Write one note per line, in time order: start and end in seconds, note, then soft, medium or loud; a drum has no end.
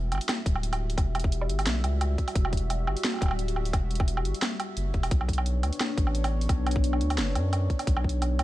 0.00 0.13 E1 loud
0.00 5.08 G3 medium
0.00 5.08 F#4 medium
0.00 5.08 E5 medium
0.11 0.20 G1 medium
0.11 closed hi-hat medium
0.11 low woodblock medium
0.15 low woodblock soft
0.18 open hi-hat medium
0.18 low woodblock soft
0.29 snare loud
0.29 closed hi-hat medium
0.29 low woodblock medium
0.46 0.97 D1 medium
0.46 kick loud
0.46 closed hi-hat medium
0.56 low woodblock medium
0.63 closed hi-hat medium
0.73 open hi-hat medium
0.73 low woodblock medium
0.90 open hi-hat medium
0.98 1.51 E1 loud
0.98 kick loud
0.98 closed hi-hat medium
0.98 low woodblock medium
1.15 closed hi-hat medium
1.15 low woodblock medium
1.20 closed hi-hat medium
1.24 kick loud
1.32 closed hi-hat medium
1.41 low woodblock medium
1.49 1.68 G1 medium
1.49 closed hi-hat medium
1.59 open hi-hat medium
1.59 low woodblock medium
1.66 1.85 B1 medium
1.66 snare loud
1.66 closed hi-hat medium
1.84 2.17 C#2 loud
1.84 closed hi-hat medium
1.84 low woodblock medium
2.01 closed hi-hat medium
2.01 low woodblock medium
2.18 kick medium
2.18 closed hi-hat soft
2.28 open hi-hat medium
2.28 low woodblock medium
2.35 2.89 E1 loud
2.35 kick loud
2.35 closed hi-hat medium
2.45 low woodblock medium
2.53 kick medium
2.53 closed hi-hat medium
2.57 closed hi-hat medium
2.70 closed hi-hat medium
2.70 low woodblock medium
2.87 2.96 G1 medium
2.87 low woodblock medium
2.97 open hi-hat medium
3.05 snare loud
3.05 closed hi-hat medium
3.14 low woodblock soft
3.16 low woodblock soft
3.19 low woodblock soft
3.21 3.72 D1 medium
3.21 kick loud
3.21 closed hi-hat medium
3.21 low woodblock soft
3.23 low woodblock soft
3.26 low woodblock soft
3.28 low woodblock soft
3.31 low woodblock medium
3.39 closed hi-hat medium
3.48 open hi-hat medium
3.56 low woodblock soft
3.65 open hi-hat medium
3.73 4.27 E1 loud
3.73 kick loud
3.73 closed hi-hat medium
3.73 low woodblock medium
3.91 closed hi-hat medium
3.95 closed hi-hat medium
4.00 kick loud
4.00 low woodblock medium
4.08 closed hi-hat medium
4.17 low woodblock medium
4.25 4.34 G1 medium
4.25 closed hi-hat medium
4.34 open hi-hat medium
4.42 snare loud
4.42 closed hi-hat medium
4.42 low woodblock medium
4.60 closed hi-hat medium
4.60 low woodblock medium
4.77 4.93 F#1 medium
4.77 closed hi-hat medium
4.94 5.10 E1 medium
4.94 kick medium
4.94 closed hi-hat soft
5.03 open hi-hat medium
5.03 low woodblock medium
5.11 5.65 B1 loud
5.11 8.44 B3 medium
5.11 8.44 D4 medium
5.11 8.44 C#5 medium
5.11 kick loud
5.11 closed hi-hat medium
5.21 low woodblock medium
5.29 kick medium
5.29 closed hi-hat soft
5.33 closed hi-hat medium
5.38 low woodblock medium
5.46 closed hi-hat medium
5.63 5.72 D2 medium
5.63 closed hi-hat medium
5.63 low woodblock medium
5.73 open hi-hat medium
5.81 snare loud
5.81 closed hi-hat medium
5.81 low woodblock medium
5.98 6.48 A1 loud
5.98 kick loud
5.98 closed hi-hat medium
6.07 low woodblock medium
6.15 closed hi-hat medium
6.24 open hi-hat medium
6.24 low woodblock medium
6.41 open hi-hat medium
6.49 7.02 B1 loud
6.49 kick loud
6.49 closed hi-hat medium
6.49 low woodblock medium
6.67 closed hi-hat soft
6.67 low woodblock medium
6.71 closed hi-hat medium
6.76 kick loud
6.84 closed hi-hat medium
6.93 low woodblock medium
7.01 7.20 D2 medium
7.01 closed hi-hat medium
7.10 open hi-hat medium
7.10 low woodblock medium
7.18 7.37 F#1 medium
7.18 snare loud
7.18 closed hi-hat medium
7.35 7.69 F#2 loud
7.35 closed hi-hat medium
7.35 low woodblock medium
7.53 closed hi-hat medium
7.53 low woodblock medium
7.70 kick medium
7.70 closed hi-hat soft
7.79 open hi-hat medium
7.79 low woodblock medium
7.87 8.40 B1 loud
7.87 kick loud
7.87 closed hi-hat medium
7.97 low woodblock medium
8.04 kick medium
8.09 closed hi-hat medium
8.22 closed hi-hat medium
8.22 low woodblock medium
8.39 8.44 D2 medium
8.39 closed hi-hat medium
8.39 low woodblock medium